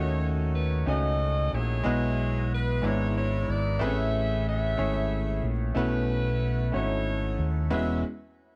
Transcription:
Already playing: fingered electric bass D#2, grand piano D#3 A3 C#4 D#4 F#4 C#5, saxophone section F#4 A4 C#5
0.55 saxophone section B4
0.86 fingered electric bass C#2, grand piano A3 C#4 D#4 F#4 G#5, saxophone section D#5
0.90 saxophone section F#4 A4
1.53 fingered electric bass A#1, saxophone section E4 G#4 C#5
1.84 fingered electric bass B1, grand piano B2 G#3 E4 F#4 B4 D#5
2.54 saxophone section B4
2.82 fingered electric bass G#1, grand piano G#2 G#3 B3 D4 E4 B4, saxophone section E4 C#5
3.18 saxophone section C#5
3.48 fingered electric bass G#1, saxophone section D5
3.79 fingered electric bass A1, grand piano A2 A3 C4 E4 G#4 B4, saxophone section G#4 C#5 E5
3.87 grand piano C#4
4.48 saxophone section G#4 C#5 E5
4.77 fingered electric bass G#1, grand piano A3 C#4 E4 G#4 C#5
5.43 fingered electric bass A#1
5.75 fingered electric bass B1, grand piano B2 A3 C#4 E4 F#4 B4, saxophone section E4 F#4 B4
6.72 fingered electric bass G#1, grand piano A3 C#4 D#4 F#4 C#5, saxophone section E4 A4 C#5
6.80 grand piano E4
7.39 fingered electric bass D#2
7.70 fingered electric bass E1, grand piano E2 G#3 C#4 E4 F#4 B4, saxophone section E5

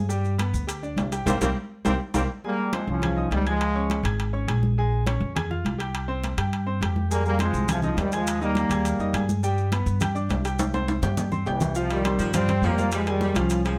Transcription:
Already playing: upright bass G2
0.09 grand piano G3 G4, high conga, maracas
0.25 high conga, maracas
0.38 grand piano B3 B4, high conga, high timbale, maracas
0.53 upright bass D2, high conga, maracas
0.67 grand piano G4 G5, high conga, high timbale, maracas
0.83 grand piano D4 D5, high conga, maracas
0.96 upright bass C2, high conga, high timbale, low timbale, maracas
1.12 grand piano G4 G5, high conga, high timbale, maracas
1.26 upright bass C2, trombone section G3 A#3 C4, grand piano G4 A#4 C5, high conga, high timbale, maracas
1.41 upright bass C2, trombone section G3 A#3 C4, grand piano G4 A#4 C5, high conga, high timbale, maracas
1.85 upright bass C2, trombone section G3 A#3 C4, grand piano G4 A#4 C5, high conga, high timbale, maracas
2.14 upright bass C2, trombone section G3 A#3 C4, grand piano G4 A#4 C5, high conga, high timbale, maracas
2.44 trombone section G3 A#3, grand piano G#3 G#4 G#5, high conga
2.59 high conga
2.73 trombone section F3 G#3, grand piano C4 C5 C6, high conga, high timbale
2.87 upright bass C2, trombone section F3 C#4, high conga
3.02 grand piano G#4 G#5 G#6, high conga, low conga, high timbale
3.16 grand piano D#4 D#5 D#6, high conga
3.31 upright bass C#2, trombone section D#3 G3, high conga, high timbale, low timbale
3.46 trombone section F3 G#3, grand piano G#4 G#5 G#6, high conga, high timbale
3.61 high timbale
3.75 grand piano C#4 C#5 C#6, high conga
3.90 high conga, high timbale
4.03 upright bass G#1, grand piano G#4 G#5 G#6, high conga, high timbale
4.19 high conga, high timbale
4.33 grand piano C#4 C#5 C#6, high conga
4.47 upright bass A#1, grand piano G#4 G#5 G#6, high conga, high timbale
4.63 high conga
4.78 grand piano G#3 G#4 G#5, high conga
4.93 high conga
5.06 grand piano C#4 C#5 C#6, high conga, high timbale
5.20 upright bass F2, high conga
5.35 grand piano G#4 G#5 G#6, high conga, low conga, high timbale
5.50 grand piano F4 F5 F6, high conga, low conga
5.64 upright bass C2, high conga, high timbale
5.78 grand piano G4 G5 G6, high conga, high timbale
5.95 high conga, high timbale
6.08 grand piano C4 C5 C6, high conga
6.24 high conga, high timbale
6.37 upright bass G2, grand piano G4 G5 G6, high conga, high timbale
6.53 high conga, high timbale
6.66 grand piano C4 C5 C6, high conga
6.81 upright bass F2, grand piano G4 G5 G6, high conga, high timbale
6.96 high conga
7.10 trombone section G3 A#3, grand piano G#3 G#4 G#5, high conga, maracas
7.25 trombone section G3 A#3, high conga, maracas
7.39 trombone section F3 G#3, grand piano C4 C5 C6, high conga, high timbale, maracas
7.53 upright bass C2, maracas
7.68 trombone section C3 F3, grand piano G#4 G#5 G#6, high conga, low conga, high timbale, maracas
7.82 trombone section C#3 F3, grand piano D#4 D#5 D#6, high conga, low conga, maracas
7.97 upright bass D#2, trombone section D#3 G3, high conga, high timbale, low timbale, maracas
8.12 trombone section F3 G#3, grand piano G#4 G#5 G#6, high conga, high timbale, maracas
8.27 high conga, high timbale, maracas
8.41 trombone section G3 A#3, grand piano D#4 D#5 D#6, high conga, maracas
8.55 high conga, high timbale, maracas
8.69 upright bass D#2, grand piano G#4 G#5 G#6, high timbale, maracas
8.85 high conga, high timbale, maracas
8.98 upright bass F2, grand piano D#4 D#5 D#6, high conga, maracas
9.13 upright bass G2, grand piano G#4 G#5 G#6, high conga, high timbale, maracas
9.29 high conga, maracas
9.43 grand piano G3 G4 G5, maracas
9.58 high conga, maracas
9.72 grand piano B3 B4 B5, high conga, high timbale, maracas
9.86 upright bass G2, high conga, maracas
10.00 grand piano G4 G5 G6, high conga, low conga, high timbale, maracas
10.15 grand piano D4 D5 D6, high conga, maracas
10.29 upright bass C2, high conga, high timbale, low timbale, maracas
10.45 grand piano G4 G5 G6, high conga, high timbale, maracas
10.59 high conga, high timbale, maracas
10.74 grand piano C4 C5 C6, high conga, high timbale, maracas
10.88 high conga, high timbale, maracas
11.02 upright bass G2, grand piano G4 G5 G6, low conga, low timbale, maracas
11.17 low conga, low timbale, maracas
11.32 grand piano C4 C5 C6, low conga, maracas
11.46 upright bass C2, trombone section C3 E3, grand piano G4 G5 G6, low timbale, maracas
11.60 low conga, low timbale, maracas
11.75 trombone section C3 F3, grand piano F3 F4 F5, maracas
11.90 trombone section D#3 G3, saxophone section G3, high conga, high timbale, maracas
12.04 grand piano C4 C5 C6, high conga, high timbale, low timbale, maracas
12.19 upright bass G2, saxophone section F3, maracas
12.33 grand piano F3 F4 F5, trombone section G3 C4, high conga, low conga, high timbale, maracas
12.48 grand piano C4 C5 C6, high conga, low conga, high timbale, maracas
12.62 upright bass F2, saxophone section F3, trombone section G3 A#3, high conga, low timbale, maracas
12.78 grand piano F3 F4 F5, high conga, maracas
12.92 trombone section F3 G#3, saxophone section G3, high conga, high timbale, maracas
13.06 trombone section D#3 G3, grand piano G#3 G#4 G#5, high timbale, maracas
13.21 saxophone section G3, high conga, low timbale, maracas
13.34 upright bass C2, grand piano F3 F4 F5, trombone section F3 C#4, high timbale, maracas
13.50 high timbale, maracas
13.64 saxophone section F3, grand piano G#3 G#4 G#5, high conga, high timbale, maracas

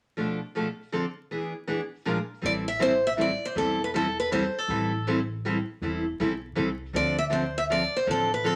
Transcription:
0.17 steel-string acoustic guitar B2 F3 A3 D4 A4
0.55 steel-string acoustic guitar B2 F3 A3 D4 A4
0.92 steel-string acoustic guitar D3 F3 C4 D4 A4
1.31 steel-string acoustic guitar E3 B3 D4 G#4
1.67 steel-string acoustic guitar E3 B3 D4 G#4
2.05 steel-string acoustic guitar A#2 F3 G#3 D4 F4 A#4
2.41 upright bass A1, steel-string acoustic guitar E3 G3 C4 E4 A4
2.46 steel-string acoustic guitar D5
2.68 steel-string acoustic guitar E5
2.79 steel-string acoustic guitar E3 G3 C4 E4 A4 C5
3.07 steel-string acoustic guitar E5
3.17 steel-string acoustic guitar E3 G3 C4 E4 A4
3.21 steel-string acoustic guitar D5
3.45 steel-string acoustic guitar C5
3.55 upright bass E1, steel-string acoustic guitar E3 G3 C4 E4 A4
3.84 steel-string acoustic guitar B4
3.94 steel-string acoustic guitar E3 G3 C4 E4 A4
4.20 steel-string acoustic guitar B4
4.31 steel-string acoustic guitar E3 G3 C4 E4 A4 C5
4.58 steel-string acoustic guitar A4
4.68 upright bass A1, steel-string acoustic guitar E3 G3 C4 E4 A4
5.07 steel-string acoustic guitar E3 G3 C4 E4 A4
5.45 steel-string acoustic guitar E3 G3 C4 E4 A4
5.82 upright bass E1, steel-string acoustic guitar E3 G3 C4 E4 A4
6.20 upright bass B1, steel-string acoustic guitar E3 G3 C4 E4 A4
6.55 upright bass C2, steel-string acoustic guitar E3 G3 C4 E4 A4
6.93 upright bass D2, steel-string acoustic guitar D3 F3 C4 D4 A4 D5
7.19 steel-string acoustic guitar E5
7.30 steel-string acoustic guitar D3 F3 C4 D4 A4 C5
7.58 steel-string acoustic guitar E5
7.70 steel-string acoustic guitar D3 F3 C4 D4 A4 D5
7.96 steel-string acoustic guitar C5
8.06 upright bass A1, steel-string acoustic guitar D3 F3 C4 D4 A4
8.11 steel-string acoustic guitar A4
8.34 steel-string acoustic guitar B4
8.44 steel-string acoustic guitar D3 F3 C4 D4 A4

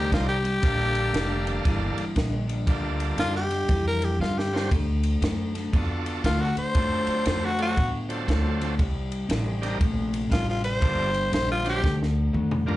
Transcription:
Already playing: upright bass D2, tonewheel organ G3 C4 D4 D#4 A#5, tenor saxophone G4
0.10 upright bass C2, clean electric guitar C3 G3, tenor saxophone F4, kick, snare, ride
0.29 tenor saxophone G4
0.44 clean electric guitar C3 G3, ride
0.62 upright bass A#1, clean electric guitar G2 D3, tonewheel organ G3 A#3 D4 A4 F5, kick, ride
0.95 ride
1.14 upright bass F1, clean electric guitar G2 D3, snare, ride
1.46 clean electric guitar G2 D3, ride
1.64 upright bass G1, clean electric guitar G2 E3, kick, ride
1.97 muted upright bass stroke, ride
2.16 upright bass A#1, clean electric guitar G2 D3, kick, snare, ride
2.48 clean electric guitar G2 D3, ride
2.67 upright bass D2, clean electric guitar G2 D3, tonewheel organ G3 A#3 D4 F4 A4, kick, ride
3.00 ride
3.17 upright bass F#2, clean electric guitar G2 D3, tenor saxophone F4, snare, ride
3.36 tenor saxophone G4
3.50 clean electric guitar G2 D3, ride
3.69 upright bass F2, clean electric guitar G2 E3, kick, ride
3.87 tenor saxophone A#4
4.02 tenor saxophone G4, ride
4.19 upright bass G2, clean electric guitar G2 D3, tenor saxophone F4, snare
4.38 tenor saxophone G4, snare
4.52 clean electric guitar G2 D3, tonewheel organ F#3 C4 D4 F4 C5
4.56 snare
4.71 upright bass D2, clean electric guitar D3 A3, kick, ride
5.03 ride
5.21 upright bass F#2, clean electric guitar D3 A3, snare, ride
5.55 clean electric guitar D3 A3, snare, ride
5.72 upright bass F2, clean electric guitar D3 B3, tonewheel organ D4 F4 F#4 A4, kick, ride
6.06 ride
6.24 upright bass D2, clean electric guitar D3 A3, tenor saxophone F4, kick, snare, ride
6.41 tenor saxophone F#4
6.55 clean electric guitar D3 A3, tenor saxophone C5, muted upright bass stroke, ride
6.74 upright bass F#2, clean electric guitar D3 A3, tonewheel organ F#3 C4 D4 F4 A4, kick, ride
7.07 muted upright bass stroke, ride
7.26 upright bass F2, clean electric guitar D3 A3, tenor saxophone C5, snare, ride
7.45 tenor saxophone F#4
7.57 clean electric guitar D3 A3, tonewheel organ F#3 C4 D4 F4 A4, ride
7.62 tenor saxophone F#4
7.77 upright bass A2, clean electric guitar D3 B3, kick, ride
8.09 tonewheel organ F#3 C4 D4 F4 A4, ride
8.28 upright bass D2, clean electric guitar D3 A3, kick, snare, ride
8.60 clean electric guitar D3 A3, ride
8.79 upright bass C2, clean electric guitar C3 G3, kick, ride
9.12 ride
9.29 upright bass A1, clean electric guitar C3 G3, snare, ride
9.61 clean electric guitar C3 G3, tonewheel organ G3 C4 D4 D#4 A#4, snare, ride
9.80 upright bass A#1, clean electric guitar C3 A3, kick, ride
10.14 ride
10.29 upright bass A1, clean electric guitar C3 G3, tenor saxophone F4, kick, snare, ride
10.49 tenor saxophone F4
10.62 clean electric guitar C3 G3, tenor saxophone C5, ride
10.81 upright bass G1, clean electric guitar G2 D3, tonewheel organ G3 A#3 D4 F4 A4, kick, ride
11.14 ride
11.31 upright bass A#1, clean electric guitar G2 D3, tenor saxophone C5, snare, ride
11.51 tenor saxophone F4
11.64 clean electric guitar G2 D3, tonewheel organ F#3 C4 D4 F4 C5, snare, ride
11.69 tenor saxophone G4
11.83 upright bass D2, clean electric guitar D3 A3, kick, snare
12.03 snare
12.33 upright bass F2, clean electric guitar D3 A3, mid tom
12.51 mid tom
12.66 clean electric guitar D3 A3, tonewheel organ G3 A#3 D4 F4 A#4, floor tom

